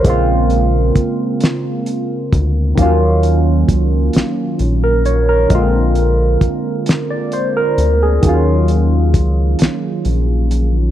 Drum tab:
HH |xxxxxx|xxxxxx|xxxxxx|xxxxxx|
SD |---o--|---o--|---o--|---o--|
BD |o-o--o|o-o---|o-o---|o-o---|